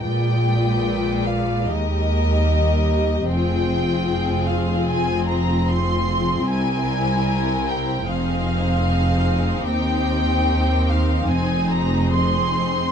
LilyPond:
<<
  \new Staff \with { instrumentName = "Violin section" } { \time 4/4 \key f \dorian \tempo 4 = 75 g''4. f''8 ees''2 | g''4. f''8 aes''8 bes''8 c'''4 | aes''4. g''8 f''2 | g''4. f''8 aes''8 bes''8 c'''4 | }
  \new Staff \with { instrumentName = "Violin section" } { \time 4/4 \key f \dorian << { d''2 ees''2 | c''1~ | c''2 c''2~ | c''1 | } \\ { ces''2 bes'2 | aes'1 | bes'2 aes'2 | g'2 aes'2 | } >> }
  \new Staff \with { instrumentName = "Viola section" } { \time 4/4 \key f \dorian << { f'2 g'2 | f'1 | e'2 ees'2~ | ees'1 | } \\ { aes2. g4 | c'1~ | c'2 c'2~ | c'1 | } >> }
  \new Staff \with { instrumentName = "Cello section" } { \clef bass \time 4/4 \key f \dorian bes,2 ees,2 | f,1 | c,2 f,2 | ees,2 f,2 | }
  \new Staff \with { instrumentName = "Double bass section" } { \clef bass \time 4/4 \key f \dorian bes,,2 ees,2 | f,,1 | c,2 f,,2 | ees,2 f,,2 | }
>>